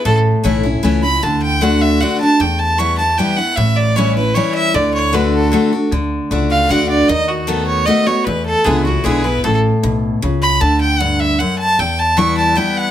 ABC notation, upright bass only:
X:1
M:3/4
L:1/8
Q:1/4=153
K:D
V:1 name="Upright bass" clef=bass
A,,,2 B,,,2 C,,2 | D,,6 | E,,6 | A,,,6 |
D,,6 | D,,2 C,,2 D,,2 | ^D,,6 | E,,2 C,,2 B,,,2 |
A,,,2 B,,,2 C,,2 | D,,6 | E,,6 |]